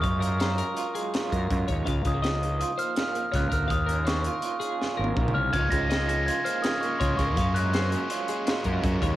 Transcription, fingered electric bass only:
X:1
M:5/4
L:1/8
Q:1/4=164
K:Db
V:1 name="Fingered electric bass" clef=bass
G,,4 z3 G,, G,, E,, | D,, D,,4 z3 D,, =D,, | E,,4 z3 A,,, B,,, C,, | D,, D,,4 z3 D,, D,, |
G,,4 z3 G,, G,, E,, |]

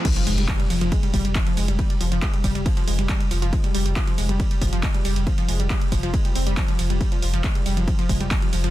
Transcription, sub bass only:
X:1
M:4/4
L:1/16
Q:1/4=138
K:Fm
V:1 name="Sub bass" clef=bass
z2 F,,, F,,, z2 F,,, F,,, z2 F,,, F,,, z2 F,,, F,,, | z2 F,,, F,,, z2 F,,, F,,, z2 F,,, F,,, z2 F,,, F,,, | z2 F,,, F,,, z2 F,,, F,,, z2 F,,, F,,, z2 F,,, F,,, | z2 F,,, F,,, z2 F,,, F,,, z2 F,,, F,,, z2 F,,, F,,, |
z2 F,,, F,,, z2 F,,, F,,, z2 F,,, F,,, z2 F,,, F,,, |]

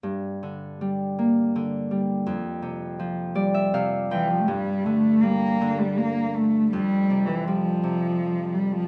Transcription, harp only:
X:1
M:3/4
L:1/16
Q:1/4=82
K:Gdor
V:1 name="Harp"
z12 | z6 d e f2 g2 | z12 | z12 |]
V:2 name="Harp" clef=bass
G,,2 D,2 G,2 B,2 D,2 G,2 | F,,2 C,2 F,2 G,2 C,2 F,2 | G,,2 D,2 G,2 D,6 | F,,2 C,2 G,2 C,6 |]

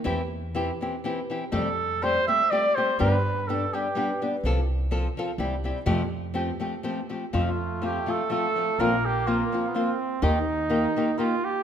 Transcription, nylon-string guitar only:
X:1
M:3/4
L:1/8
Q:"Swing" 1/4=124
K:F
V:1 name="Nylon-string guitar"
[E,CEG] z [E,CEG] [E,CEG] [E,CEG] [E,CEG] | [F,,C,G,A,CG] z [G,A,CG] [G,A,CG] [G,A,CG] [G,A,CG] | [G,,D,G,=B,DG] z [G,B,DG] [G,B,DG] [G,B,DG] [G,B,DG] | [C,F,CFA] z [F,CFA] [F,CFA] [G,CEG] [G,CEG] |
[F,,C,F,A,CG] z [F,A,CG] [F,A,CG] [F,A,CG] [F,A,CG] | [F,,C,F,A,CF] z [F,A,CF] [F,A,CF] [F,A,CF] [F,A,CF] | [B,,F,B,CF] z [F,B,CF] [F,B,CF] [F,B,CF] z | [_E,B,_EG] z [E,B,EG] [E,B,EG] [E,B,EG] z |]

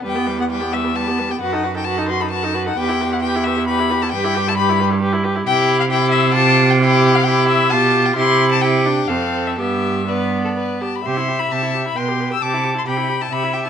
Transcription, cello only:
X:1
M:3/4
L:1/8
Q:1/4=132
K:Em
V:1 name="Cello" clef=bass
E,,6 | F,,6 | E,,6 | G,,6 |
[K:C] C,6- | C,4 B,,2 | C,4 F,,2 | G,,4- G,, z |
C,2 C,2 B,,2 | C,2 C,2 C,2 |]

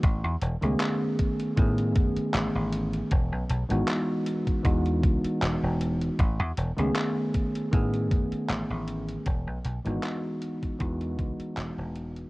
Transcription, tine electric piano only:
X:1
M:4/4
L:1/16
Q:"Swing 16ths" 1/4=78
K:E
V:1 name="Tine electric piano"
z3 [D,A,B,CG]4- [D,A,B,CG] [D,A,B,CG]8 | z3 [E,G,B,DF]4- [E,G,B,DF] [E,G,B,DF]8 | z3 [D,A,B,CG]4- [D,A,B,CG] [D,A,B,CG]8 | z3 [E,G,B,DF]4- [E,G,B,DF] [E,G,B,DF]8 |]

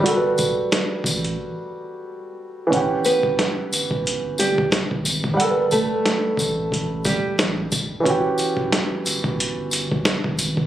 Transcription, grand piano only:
X:1
M:4/4
L:1/8
Q:"Swing 16ths" 1/4=90
K:Edor
V:1 name="Grand piano"
[G,FA^AB]8 | [E,CGf]8 | [G,A^ABf]8 | [E,CFG]8 |]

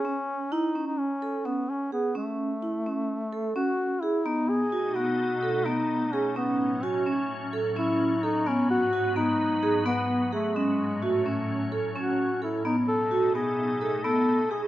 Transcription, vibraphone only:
X:1
M:9/8
L:1/8
Q:3/8=86
K:Alyd
V:1 name="Vibraphone"
C2 E C2 A C2 G | C2 E C2 A C2 G | B,2 F B,2 A B,2 G | C2 F C2 A C2 A |
B,2 F B,2 G B,2 G | C2 F C2 A C2 A | B,2 F B,2 A B,2 G |]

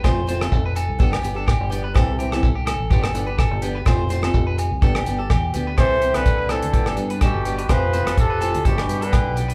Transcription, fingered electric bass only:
X:1
M:4/4
L:1/16
Q:"Swing 16ths" 1/4=126
K:C
V:1 name="Fingered electric bass" clef=bass
F,,,4 F,,,3 C,, G,,,2 G,,,3 G,,,3 | C,,4 C,,3 A,,, G,,,2 G,,,3 G,,,3 | F,,,4 F,,,3 C,, G,,,2 G,,,2 E,,2 D,,2 | C,,3 C,,4 D,, G,,,2 G,,3 G,,,3 |
F,,,3 F,,,4 D,, G,,,2 G,,3 B,,,3 |]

